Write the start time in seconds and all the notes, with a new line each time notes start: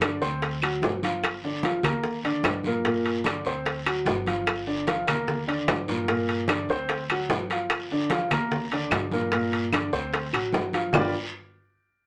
Already playing: G2
0.01 D3 D4 D5, high bongo, high conga, high timbale, short guiro, claves
0.22 D2 C4 C5 C6, high bongo, high conga, short guiro
0.42 high bongo, high conga, high timbale, long guiro
0.61 F#3 F#4 F#5, high conga, high timbale, claves
0.82 G1, high bongo, low bongo, high conga, low timbale, short guiro
1.03 F3 F4 F5, high bongo, high conga, high timbale, short guiro
1.23 high bongo, high conga, high timbale, long guiro, claves
1.43 D3 D4 D5, high conga
1.63 F3 F4 F5, high bongo, high conga, high timbale, short guiro
1.83 D#2 A#3 A#4 A#5, low conga, high timbale, short guiro, claves
2.03 high bongo, high conga, long guiro
2.24 D3 D4 D5, high conga, high timbale
2.43 G2, high bongo, low bongo, high conga, high timbale, low timbale, short guiro, claves
2.64 A#2 A#3 A#4, high conga, short guiro
2.84 A#2 A#3 A#4, high bongo, high conga, high timbale, long guiro
3.04 high bongo, high conga, high timbale
3.24 D3 D4 D5, high bongo, high conga, high timbale, short guiro, claves
3.45 D2 C4 C5 C6, high bongo, high conga, short guiro
3.65 high bongo, high conga, high timbale, long guiro
3.85 F#3 F#4 F#5, high conga, high timbale, claves
4.05 G1, high bongo, low bongo, high conga, low timbale, short guiro
4.26 F3 F4 F5, high bongo, high conga, high timbale, short guiro
4.46 high bongo, high conga, high timbale, long guiro, claves
4.67 D3 D4 D5, high conga
4.87 F3 F4 F5, high bongo, high conga, high timbale, short guiro
5.07 D#2 A#3 A#4 A#5, low conga, high timbale, short guiro, claves
5.27 high bongo, high conga, low conga, long guiro
5.47 D3 D4 D5, high conga, high timbale
5.68 G2, high bongo, low bongo, high conga, high timbale, low timbale, short guiro, claves
5.88 A#2 A#3 A#4, high conga, short guiro
6.08 A#2 A#3 A#4, high bongo, high conga, high timbale, long guiro
6.29 high bongo, high conga, high timbale
6.48 D3 D4 D5, high bongo, high conga, high timbale, short guiro, claves
6.69 D2 C4 C5 C6, high bongo, high conga, short guiro
6.89 high bongo, high conga, high timbale, long guiro
7.09 F#3 F#4 F#5, high conga, high timbale, claves
7.29 G1, high bongo, low bongo, high conga, low timbale, short guiro
7.50 F3 F4 F5, high bongo, high timbale, short guiro
7.70 high bongo, high conga, high timbale, long guiro, claves
7.91 D3 D4 D5, high conga
8.10 F3 F4 F5, high bongo, high conga, high timbale, short guiro
8.30 D#2 A#3 A#4 A#5, low conga, high timbale, short guiro, claves
8.51 high bongo, high conga, low conga, long guiro
8.71 D3 D4 D5, high conga, high timbale
8.91 G2, high bongo, low bongo, high conga, high timbale, low timbale, short guiro, claves
9.11 A#2 A#3 A#4, high conga, short guiro
9.32 A#2 A#3 A#4, high bongo, high conga, high timbale, long guiro
9.52 high bongo, high conga, high timbale
9.72 D3 D4 D5, high bongo, high conga, high timbale, short guiro, claves
9.92 D2 C4 C5 C6, high bongo, high conga, short guiro
10.13 high bongo, high conga, high timbale, long guiro
10.33 A1 F#3 F#4 F#5, high conga, high timbale, claves
10.52 G1, high bongo, low bongo, high conga, low timbale, short guiro
10.73 F3 F4 F5, high bongo, high conga, high timbale, short guiro
10.93 G1 G3 D4 F4 G4 A#4 D5, low bongo, low conga, low timbale, long guiro, claves